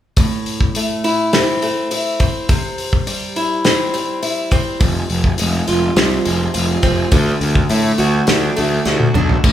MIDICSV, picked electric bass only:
0, 0, Header, 1, 2, 480
1, 0, Start_track
1, 0, Tempo, 579542
1, 144, Time_signature, 4, 2, 24, 8
1, 7887, End_track
2, 0, Start_track
2, 0, Title_t, "Picked electric bass"
2, 0, Program_c, 0, 34
2, 3980, Note_on_c, 0, 29, 89
2, 4148, Note_off_c, 0, 29, 0
2, 4229, Note_on_c, 0, 29, 83
2, 4394, Note_off_c, 0, 29, 0
2, 4469, Note_on_c, 0, 29, 85
2, 4634, Note_off_c, 0, 29, 0
2, 4712, Note_on_c, 0, 29, 76
2, 4875, Note_off_c, 0, 29, 0
2, 4939, Note_on_c, 0, 36, 71
2, 5107, Note_off_c, 0, 36, 0
2, 5189, Note_on_c, 0, 29, 78
2, 5354, Note_off_c, 0, 29, 0
2, 5429, Note_on_c, 0, 29, 75
2, 5594, Note_off_c, 0, 29, 0
2, 5658, Note_on_c, 0, 29, 80
2, 5827, Note_off_c, 0, 29, 0
2, 5895, Note_on_c, 0, 38, 85
2, 6064, Note_off_c, 0, 38, 0
2, 6138, Note_on_c, 0, 38, 84
2, 6306, Note_off_c, 0, 38, 0
2, 6376, Note_on_c, 0, 45, 78
2, 6545, Note_off_c, 0, 45, 0
2, 6618, Note_on_c, 0, 38, 78
2, 6787, Note_off_c, 0, 38, 0
2, 6863, Note_on_c, 0, 38, 75
2, 7030, Note_off_c, 0, 38, 0
2, 7111, Note_on_c, 0, 38, 76
2, 7275, Note_off_c, 0, 38, 0
2, 7339, Note_on_c, 0, 38, 77
2, 7507, Note_off_c, 0, 38, 0
2, 7581, Note_on_c, 0, 35, 77
2, 7749, Note_off_c, 0, 35, 0
2, 7816, Note_on_c, 0, 33, 85
2, 7887, Note_off_c, 0, 33, 0
2, 7887, End_track
0, 0, End_of_file